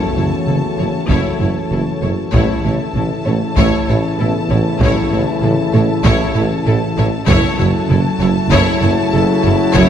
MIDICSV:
0, 0, Header, 1, 12, 480
1, 0, Start_track
1, 0, Key_signature, 3, "minor"
1, 0, Tempo, 618557
1, 1815, Time_signature, 4, 2, 24, 8
1, 7675, End_track
2, 0, Start_track
2, 0, Title_t, "Violin section"
2, 0, Program_c, 0, 48
2, 0, Note_on_c, 0, 81, 55
2, 1781, Note_off_c, 0, 81, 0
2, 1807, Note_on_c, 0, 81, 62
2, 5620, Note_off_c, 0, 81, 0
2, 5645, Note_on_c, 0, 81, 90
2, 7675, Note_off_c, 0, 81, 0
2, 7675, End_track
3, 0, Start_track
3, 0, Title_t, "Violin section"
3, 0, Program_c, 1, 48
3, 0, Note_on_c, 1, 73, 75
3, 116, Note_off_c, 1, 73, 0
3, 129, Note_on_c, 1, 73, 53
3, 191, Note_off_c, 1, 73, 0
3, 364, Note_on_c, 1, 69, 59
3, 426, Note_off_c, 1, 69, 0
3, 602, Note_on_c, 1, 73, 62
3, 664, Note_off_c, 1, 73, 0
3, 845, Note_on_c, 1, 73, 74
3, 1073, Note_off_c, 1, 73, 0
3, 1086, Note_on_c, 1, 73, 51
3, 1148, Note_off_c, 1, 73, 0
3, 1332, Note_on_c, 1, 69, 60
3, 1394, Note_off_c, 1, 69, 0
3, 1567, Note_on_c, 1, 73, 60
3, 1629, Note_off_c, 1, 73, 0
3, 1796, Note_on_c, 1, 73, 77
3, 2028, Note_off_c, 1, 73, 0
3, 2051, Note_on_c, 1, 73, 59
3, 2113, Note_off_c, 1, 73, 0
3, 2288, Note_on_c, 1, 69, 54
3, 2350, Note_off_c, 1, 69, 0
3, 2524, Note_on_c, 1, 73, 67
3, 2586, Note_off_c, 1, 73, 0
3, 2774, Note_on_c, 1, 73, 101
3, 2998, Note_off_c, 1, 73, 0
3, 3013, Note_on_c, 1, 73, 68
3, 3075, Note_off_c, 1, 73, 0
3, 3249, Note_on_c, 1, 69, 67
3, 3311, Note_off_c, 1, 69, 0
3, 3490, Note_on_c, 1, 73, 71
3, 3552, Note_off_c, 1, 73, 0
3, 3736, Note_on_c, 1, 73, 98
3, 3959, Note_off_c, 1, 73, 0
3, 3969, Note_on_c, 1, 73, 64
3, 4031, Note_off_c, 1, 73, 0
3, 4202, Note_on_c, 1, 69, 64
3, 4265, Note_off_c, 1, 69, 0
3, 4448, Note_on_c, 1, 73, 78
3, 4510, Note_off_c, 1, 73, 0
3, 4689, Note_on_c, 1, 73, 102
3, 4915, Note_off_c, 1, 73, 0
3, 4924, Note_on_c, 1, 73, 73
3, 4986, Note_off_c, 1, 73, 0
3, 5167, Note_on_c, 1, 69, 88
3, 5230, Note_off_c, 1, 69, 0
3, 5412, Note_on_c, 1, 73, 89
3, 5474, Note_off_c, 1, 73, 0
3, 5641, Note_on_c, 1, 73, 115
3, 5871, Note_off_c, 1, 73, 0
3, 5892, Note_on_c, 1, 73, 79
3, 5954, Note_off_c, 1, 73, 0
3, 6136, Note_on_c, 1, 69, 73
3, 6199, Note_off_c, 1, 69, 0
3, 6364, Note_on_c, 1, 73, 91
3, 6426, Note_off_c, 1, 73, 0
3, 6597, Note_on_c, 1, 73, 117
3, 6829, Note_off_c, 1, 73, 0
3, 6844, Note_on_c, 1, 73, 77
3, 6906, Note_off_c, 1, 73, 0
3, 7084, Note_on_c, 1, 69, 81
3, 7146, Note_off_c, 1, 69, 0
3, 7313, Note_on_c, 1, 73, 81
3, 7375, Note_off_c, 1, 73, 0
3, 7553, Note_on_c, 1, 73, 115
3, 7675, Note_off_c, 1, 73, 0
3, 7675, End_track
4, 0, Start_track
4, 0, Title_t, "Felt piano"
4, 0, Program_c, 2, 0
4, 0, Control_c, 2, 64, 127
4, 0, Note_on_c, 2, 59, 39
4, 0, Note_on_c, 2, 71, 45
4, 1303, Note_off_c, 2, 59, 0
4, 1305, Note_off_c, 2, 71, 0
4, 1828, Control_c, 2, 64, 0
4, 1949, Control_c, 2, 64, 127
4, 2526, Note_on_c, 2, 73, 66
4, 3251, Note_on_c, 2, 71, 66
4, 3253, Note_on_c, 2, 59, 51
4, 3940, Note_off_c, 2, 73, 0
4, 4446, Note_on_c, 2, 57, 57
4, 4447, Note_on_c, 2, 69, 82
4, 4662, Note_off_c, 2, 71, 0
4, 4663, Note_off_c, 2, 59, 0
4, 5669, Control_c, 2, 64, 0
4, 5810, Control_c, 2, 64, 127
4, 5859, Note_off_c, 2, 57, 0
4, 5860, Note_off_c, 2, 69, 0
4, 5886, Note_on_c, 2, 66, 98
4, 7083, Note_on_c, 2, 69, 98
4, 7299, Note_off_c, 2, 66, 0
4, 7675, Note_off_c, 2, 69, 0
4, 7675, End_track
5, 0, Start_track
5, 0, Title_t, "Analog synth pad"
5, 0, Program_c, 3, 89
5, 0, Note_on_c, 3, 52, 78
5, 0, Note_on_c, 3, 61, 70
5, 0, Note_on_c, 3, 69, 69
5, 0, Note_on_c, 3, 73, 73
5, 1781, Note_off_c, 3, 61, 0
5, 1783, Note_off_c, 3, 52, 0
5, 1784, Note_off_c, 3, 69, 0
5, 1784, Note_off_c, 3, 73, 0
5, 1811, Note_on_c, 3, 61, 80
5, 1813, Note_on_c, 3, 52, 83
5, 1813, Note_on_c, 3, 69, 79
5, 1813, Note_on_c, 3, 76, 81
5, 5622, Note_off_c, 3, 61, 0
5, 5623, Note_off_c, 3, 52, 0
5, 5623, Note_off_c, 3, 69, 0
5, 5650, Note_off_c, 3, 76, 0
5, 5658, Note_on_c, 3, 61, 88
5, 5660, Note_on_c, 3, 69, 95
5, 5660, Note_on_c, 3, 76, 94
5, 5662, Note_on_c, 3, 54, 90
5, 7675, Note_off_c, 3, 54, 0
5, 7675, Note_off_c, 3, 61, 0
5, 7675, Note_off_c, 3, 69, 0
5, 7675, Note_off_c, 3, 76, 0
5, 7675, End_track
6, 0, Start_track
6, 0, Title_t, "Viola section"
6, 0, Program_c, 4, 48
6, 0, Note_on_c, 4, 64, 76
6, 120, Note_off_c, 4, 64, 0
6, 137, Note_on_c, 4, 64, 54
6, 199, Note_off_c, 4, 64, 0
6, 371, Note_on_c, 4, 64, 54
6, 433, Note_off_c, 4, 64, 0
6, 618, Note_on_c, 4, 64, 59
6, 680, Note_off_c, 4, 64, 0
6, 850, Note_on_c, 4, 64, 84
6, 1076, Note_off_c, 4, 64, 0
6, 1095, Note_on_c, 4, 64, 59
6, 1157, Note_off_c, 4, 64, 0
6, 1336, Note_on_c, 4, 64, 62
6, 1398, Note_off_c, 4, 64, 0
6, 1575, Note_on_c, 4, 64, 67
6, 1637, Note_off_c, 4, 64, 0
6, 1815, Note_on_c, 4, 64, 83
6, 2038, Note_off_c, 4, 64, 0
6, 2054, Note_on_c, 4, 64, 57
6, 2116, Note_off_c, 4, 64, 0
6, 2297, Note_on_c, 4, 64, 63
6, 2359, Note_off_c, 4, 64, 0
6, 2535, Note_on_c, 4, 64, 65
6, 2597, Note_off_c, 4, 64, 0
6, 2768, Note_on_c, 4, 64, 89
6, 2995, Note_off_c, 4, 64, 0
6, 3011, Note_on_c, 4, 64, 62
6, 3074, Note_off_c, 4, 64, 0
6, 3257, Note_on_c, 4, 64, 78
6, 3319, Note_off_c, 4, 64, 0
6, 3490, Note_on_c, 4, 64, 76
6, 3552, Note_off_c, 4, 64, 0
6, 3733, Note_on_c, 4, 64, 91
6, 3957, Note_off_c, 4, 64, 0
6, 3974, Note_on_c, 4, 64, 65
6, 4036, Note_off_c, 4, 64, 0
6, 4212, Note_on_c, 4, 64, 72
6, 4274, Note_off_c, 4, 64, 0
6, 4453, Note_on_c, 4, 64, 71
6, 4515, Note_off_c, 4, 64, 0
6, 4692, Note_on_c, 4, 64, 100
6, 4917, Note_off_c, 4, 64, 0
6, 4931, Note_on_c, 4, 64, 70
6, 4993, Note_off_c, 4, 64, 0
6, 5176, Note_on_c, 4, 64, 76
6, 5238, Note_off_c, 4, 64, 0
6, 5411, Note_on_c, 4, 64, 82
6, 5473, Note_off_c, 4, 64, 0
6, 5650, Note_on_c, 4, 64, 106
6, 5875, Note_off_c, 4, 64, 0
6, 5891, Note_on_c, 4, 64, 79
6, 5953, Note_off_c, 4, 64, 0
6, 6129, Note_on_c, 4, 64, 83
6, 6191, Note_off_c, 4, 64, 0
6, 6369, Note_on_c, 4, 64, 86
6, 6431, Note_off_c, 4, 64, 0
6, 6611, Note_on_c, 4, 64, 112
6, 6836, Note_off_c, 4, 64, 0
6, 6858, Note_on_c, 4, 64, 73
6, 6921, Note_off_c, 4, 64, 0
6, 7099, Note_on_c, 4, 64, 79
6, 7161, Note_off_c, 4, 64, 0
6, 7338, Note_on_c, 4, 64, 84
6, 7400, Note_off_c, 4, 64, 0
6, 7571, Note_on_c, 4, 64, 112
6, 7675, Note_off_c, 4, 64, 0
6, 7675, End_track
7, 0, Start_track
7, 0, Title_t, "French horn section"
7, 0, Program_c, 5, 60
7, 0, Note_on_c, 5, 57, 66
7, 0, Note_on_c, 5, 66, 71
7, 1778, Note_off_c, 5, 57, 0
7, 1781, Note_off_c, 5, 66, 0
7, 1817, Note_on_c, 5, 57, 80
7, 1820, Note_on_c, 5, 64, 87
7, 5526, Note_off_c, 5, 57, 0
7, 5526, Note_off_c, 5, 64, 0
7, 5658, Note_on_c, 5, 57, 106
7, 5661, Note_on_c, 5, 64, 112
7, 7675, Note_off_c, 5, 57, 0
7, 7675, Note_off_c, 5, 64, 0
7, 7675, End_track
8, 0, Start_track
8, 0, Title_t, "Trombone section"
8, 0, Program_c, 6, 61
8, 0, Note_on_c, 6, 49, 67
8, 0, Note_on_c, 6, 52, 58
8, 1779, Note_off_c, 6, 52, 0
8, 1780, Note_off_c, 6, 49, 0
8, 1803, Note_on_c, 6, 49, 74
8, 1803, Note_on_c, 6, 52, 76
8, 5523, Note_off_c, 6, 49, 0
8, 5523, Note_off_c, 6, 52, 0
8, 5654, Note_on_c, 6, 49, 90
8, 5655, Note_on_c, 6, 54, 94
8, 7675, Note_off_c, 6, 49, 0
8, 7675, Note_off_c, 6, 54, 0
8, 7675, End_track
9, 0, Start_track
9, 0, Title_t, "Cello section"
9, 0, Program_c, 7, 48
9, 127, Note_on_c, 7, 42, 53
9, 189, Note_off_c, 7, 42, 0
9, 365, Note_on_c, 7, 42, 49
9, 427, Note_off_c, 7, 42, 0
9, 609, Note_on_c, 7, 42, 58
9, 671, Note_off_c, 7, 42, 0
9, 846, Note_on_c, 7, 42, 78
9, 908, Note_off_c, 7, 42, 0
9, 1084, Note_on_c, 7, 42, 56
9, 1146, Note_off_c, 7, 42, 0
9, 1327, Note_on_c, 7, 42, 61
9, 1389, Note_off_c, 7, 42, 0
9, 1567, Note_on_c, 7, 42, 61
9, 1629, Note_off_c, 7, 42, 0
9, 1804, Note_on_c, 7, 45, 85
9, 1866, Note_off_c, 7, 45, 0
9, 2050, Note_on_c, 7, 45, 62
9, 2112, Note_off_c, 7, 45, 0
9, 2294, Note_on_c, 7, 45, 63
9, 2356, Note_off_c, 7, 45, 0
9, 2527, Note_on_c, 7, 45, 60
9, 2589, Note_off_c, 7, 45, 0
9, 2769, Note_on_c, 7, 45, 100
9, 2831, Note_off_c, 7, 45, 0
9, 3013, Note_on_c, 7, 45, 63
9, 3075, Note_off_c, 7, 45, 0
9, 3253, Note_on_c, 7, 45, 70
9, 3315, Note_off_c, 7, 45, 0
9, 3489, Note_on_c, 7, 45, 70
9, 3551, Note_off_c, 7, 45, 0
9, 3729, Note_on_c, 7, 45, 104
9, 3791, Note_off_c, 7, 45, 0
9, 3972, Note_on_c, 7, 45, 68
9, 4034, Note_off_c, 7, 45, 0
9, 4210, Note_on_c, 7, 45, 72
9, 4272, Note_off_c, 7, 45, 0
9, 4450, Note_on_c, 7, 45, 80
9, 4513, Note_off_c, 7, 45, 0
9, 4691, Note_on_c, 7, 45, 112
9, 4753, Note_off_c, 7, 45, 0
9, 4930, Note_on_c, 7, 45, 73
9, 4992, Note_off_c, 7, 45, 0
9, 5167, Note_on_c, 7, 45, 70
9, 5230, Note_off_c, 7, 45, 0
9, 5413, Note_on_c, 7, 45, 78
9, 5475, Note_off_c, 7, 45, 0
9, 5653, Note_on_c, 7, 42, 111
9, 5715, Note_off_c, 7, 42, 0
9, 5892, Note_on_c, 7, 42, 77
9, 5954, Note_off_c, 7, 42, 0
9, 6132, Note_on_c, 7, 42, 84
9, 6194, Note_off_c, 7, 42, 0
9, 6375, Note_on_c, 7, 42, 78
9, 6437, Note_off_c, 7, 42, 0
9, 6614, Note_on_c, 7, 42, 112
9, 6676, Note_off_c, 7, 42, 0
9, 6855, Note_on_c, 7, 42, 81
9, 6917, Note_off_c, 7, 42, 0
9, 7095, Note_on_c, 7, 42, 77
9, 7157, Note_off_c, 7, 42, 0
9, 7337, Note_on_c, 7, 42, 84
9, 7399, Note_off_c, 7, 42, 0
9, 7574, Note_on_c, 7, 42, 120
9, 7636, Note_off_c, 7, 42, 0
9, 7675, End_track
10, 0, Start_track
10, 0, Title_t, "Double bass section"
10, 0, Program_c, 8, 48
10, 129, Note_on_c, 8, 30, 54
10, 191, Note_off_c, 8, 30, 0
10, 367, Note_on_c, 8, 30, 55
10, 429, Note_off_c, 8, 30, 0
10, 603, Note_on_c, 8, 30, 57
10, 665, Note_off_c, 8, 30, 0
10, 844, Note_on_c, 8, 30, 76
10, 906, Note_off_c, 8, 30, 0
10, 1086, Note_on_c, 8, 30, 56
10, 1148, Note_off_c, 8, 30, 0
10, 1329, Note_on_c, 8, 30, 54
10, 1391, Note_off_c, 8, 30, 0
10, 1577, Note_on_c, 8, 30, 62
10, 1639, Note_off_c, 8, 30, 0
10, 1810, Note_on_c, 8, 33, 87
10, 1873, Note_off_c, 8, 33, 0
10, 2053, Note_on_c, 8, 33, 61
10, 2115, Note_off_c, 8, 33, 0
10, 2286, Note_on_c, 8, 33, 64
10, 2348, Note_off_c, 8, 33, 0
10, 2532, Note_on_c, 8, 33, 60
10, 2594, Note_off_c, 8, 33, 0
10, 2774, Note_on_c, 8, 33, 92
10, 2836, Note_off_c, 8, 33, 0
10, 3015, Note_on_c, 8, 33, 61
10, 3077, Note_off_c, 8, 33, 0
10, 3259, Note_on_c, 8, 33, 65
10, 3322, Note_off_c, 8, 33, 0
10, 3491, Note_on_c, 8, 33, 65
10, 3553, Note_off_c, 8, 33, 0
10, 3735, Note_on_c, 8, 33, 98
10, 3797, Note_off_c, 8, 33, 0
10, 3968, Note_on_c, 8, 33, 65
10, 4030, Note_off_c, 8, 33, 0
10, 4206, Note_on_c, 8, 33, 74
10, 4268, Note_off_c, 8, 33, 0
10, 4445, Note_on_c, 8, 33, 73
10, 4507, Note_off_c, 8, 33, 0
10, 4686, Note_on_c, 8, 33, 101
10, 4748, Note_off_c, 8, 33, 0
10, 4925, Note_on_c, 8, 33, 75
10, 4987, Note_off_c, 8, 33, 0
10, 5169, Note_on_c, 8, 33, 75
10, 5231, Note_off_c, 8, 33, 0
10, 5410, Note_on_c, 8, 33, 80
10, 5473, Note_off_c, 8, 33, 0
10, 5648, Note_on_c, 8, 30, 114
10, 5710, Note_off_c, 8, 30, 0
10, 5894, Note_on_c, 8, 30, 75
10, 5956, Note_off_c, 8, 30, 0
10, 6130, Note_on_c, 8, 30, 84
10, 6192, Note_off_c, 8, 30, 0
10, 6367, Note_on_c, 8, 30, 77
10, 6429, Note_off_c, 8, 30, 0
10, 6601, Note_on_c, 8, 30, 107
10, 6663, Note_off_c, 8, 30, 0
10, 6845, Note_on_c, 8, 30, 80
10, 6907, Note_off_c, 8, 30, 0
10, 7089, Note_on_c, 8, 30, 74
10, 7151, Note_off_c, 8, 30, 0
10, 7331, Note_on_c, 8, 30, 80
10, 7393, Note_off_c, 8, 30, 0
10, 7565, Note_on_c, 8, 30, 115
10, 7627, Note_off_c, 8, 30, 0
10, 7675, End_track
11, 0, Start_track
11, 0, Title_t, "Tuba"
11, 0, Program_c, 10, 58
11, 130, Note_on_c, 10, 30, 55
11, 227, Note_off_c, 10, 30, 0
11, 371, Note_on_c, 10, 30, 55
11, 468, Note_off_c, 10, 30, 0
11, 611, Note_on_c, 10, 30, 56
11, 708, Note_off_c, 10, 30, 0
11, 848, Note_on_c, 10, 30, 68
11, 945, Note_off_c, 10, 30, 0
11, 1087, Note_on_c, 10, 30, 59
11, 1185, Note_off_c, 10, 30, 0
11, 1329, Note_on_c, 10, 30, 61
11, 1427, Note_off_c, 10, 30, 0
11, 1573, Note_on_c, 10, 30, 57
11, 1669, Note_off_c, 10, 30, 0
11, 1811, Note_on_c, 10, 33, 85
11, 1908, Note_off_c, 10, 33, 0
11, 2053, Note_on_c, 10, 33, 61
11, 2150, Note_off_c, 10, 33, 0
11, 2297, Note_on_c, 10, 33, 60
11, 2393, Note_off_c, 10, 33, 0
11, 2537, Note_on_c, 10, 33, 60
11, 2633, Note_off_c, 10, 33, 0
11, 2780, Note_on_c, 10, 33, 82
11, 2875, Note_off_c, 10, 33, 0
11, 3020, Note_on_c, 10, 33, 71
11, 3115, Note_off_c, 10, 33, 0
11, 3261, Note_on_c, 10, 33, 68
11, 3356, Note_off_c, 10, 33, 0
11, 3501, Note_on_c, 10, 33, 68
11, 3596, Note_off_c, 10, 33, 0
11, 3736, Note_on_c, 10, 33, 93
11, 3832, Note_off_c, 10, 33, 0
11, 3980, Note_on_c, 10, 33, 73
11, 4075, Note_off_c, 10, 33, 0
11, 4216, Note_on_c, 10, 33, 70
11, 4312, Note_off_c, 10, 33, 0
11, 4462, Note_on_c, 10, 33, 67
11, 4556, Note_off_c, 10, 33, 0
11, 4697, Note_on_c, 10, 33, 96
11, 4793, Note_off_c, 10, 33, 0
11, 4940, Note_on_c, 10, 33, 83
11, 5035, Note_off_c, 10, 33, 0
11, 5177, Note_on_c, 10, 33, 77
11, 5273, Note_off_c, 10, 33, 0
11, 5415, Note_on_c, 10, 33, 72
11, 5511, Note_off_c, 10, 33, 0
11, 5652, Note_on_c, 10, 30, 107
11, 5749, Note_off_c, 10, 30, 0
11, 5895, Note_on_c, 10, 30, 82
11, 5991, Note_off_c, 10, 30, 0
11, 6134, Note_on_c, 10, 30, 75
11, 6230, Note_off_c, 10, 30, 0
11, 6375, Note_on_c, 10, 30, 71
11, 6471, Note_off_c, 10, 30, 0
11, 6610, Note_on_c, 10, 30, 105
11, 6707, Note_off_c, 10, 30, 0
11, 6852, Note_on_c, 10, 30, 83
11, 6949, Note_off_c, 10, 30, 0
11, 7093, Note_on_c, 10, 30, 90
11, 7190, Note_off_c, 10, 30, 0
11, 7338, Note_on_c, 10, 30, 76
11, 7433, Note_off_c, 10, 30, 0
11, 7579, Note_on_c, 10, 30, 113
11, 7674, Note_off_c, 10, 30, 0
11, 7675, End_track
12, 0, Start_track
12, 0, Title_t, "Taiko and cinematic ensemble drums"
12, 130, Note_on_c, 9, 47, 52
12, 207, Note_off_c, 9, 47, 0
12, 368, Note_on_c, 9, 47, 59
12, 446, Note_off_c, 9, 47, 0
12, 849, Note_on_c, 9, 41, 89
12, 927, Note_off_c, 9, 41, 0
12, 1815, Note_on_c, 9, 41, 97
12, 1892, Note_off_c, 9, 41, 0
12, 2053, Note_on_c, 9, 47, 54
12, 2131, Note_off_c, 9, 47, 0
12, 2289, Note_on_c, 9, 47, 58
12, 2367, Note_off_c, 9, 47, 0
12, 2770, Note_on_c, 9, 41, 90
12, 2848, Note_off_c, 9, 41, 0
12, 3733, Note_on_c, 9, 41, 111
12, 3811, Note_off_c, 9, 41, 0
12, 3970, Note_on_c, 9, 47, 55
12, 4047, Note_off_c, 9, 47, 0
12, 4213, Note_on_c, 9, 47, 63
12, 4290, Note_off_c, 9, 47, 0
12, 4691, Note_on_c, 9, 41, 90
12, 4769, Note_off_c, 9, 41, 0
12, 5650, Note_on_c, 9, 41, 112
12, 5728, Note_off_c, 9, 41, 0
12, 5890, Note_on_c, 9, 47, 59
12, 5968, Note_off_c, 9, 47, 0
12, 6130, Note_on_c, 9, 47, 72
12, 6208, Note_off_c, 9, 47, 0
12, 6610, Note_on_c, 9, 41, 91
12, 6687, Note_off_c, 9, 41, 0
12, 7569, Note_on_c, 9, 41, 118
12, 7646, Note_off_c, 9, 41, 0
12, 7675, End_track
0, 0, End_of_file